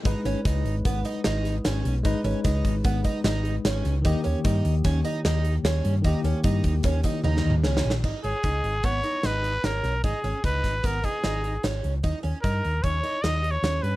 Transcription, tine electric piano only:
\new Staff \with { instrumentName = "Tine electric piano" } { \time 5/4 \key gis \minor \tempo 4 = 150 <gis dis' b'>1~ <gis dis' b'>4 | <gis dis' b'>1~ <gis dis' b'>4 | <dis ais g'>1~ <dis ais g'>4 | <dis ais g'>1~ <dis ais g'>4 |
r1 r4 | r1 r4 | r1 r4 | }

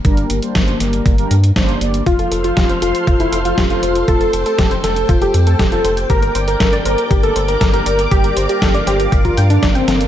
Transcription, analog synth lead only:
\new Staff \with { instrumentName = "Analog synth lead" } { \time 4/4 \key g \dorian \tempo 4 = 119 r1 | f'8 r16 f'8 r16 f'8 r16 e'16 r16 f'16 r16 f'8 r16 | a'8 r16 a'8 r16 a'8 r16 g'16 r16 a'16 r16 a'8 r16 | bes'8 r16 bes'8 r16 bes'8 r16 a'16 r16 bes'16 r16 bes'8 r16 |
g'8 r16 g'8 r16 g'8 r16 f'16 r16 d'16 r16 c'8 r16 | }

